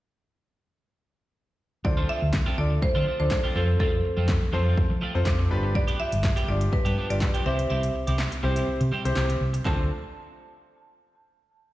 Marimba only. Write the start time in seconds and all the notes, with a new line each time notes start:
1.85 D5
2.09 E5
2.58 D5
2.83 C5
3.20 C5
3.56 A4
3.80 A4
5.75 D5
6.00 E5
6.48 D5
6.73 B4
7.10 D5
7.46 E5
7.70 E5
9.65 A5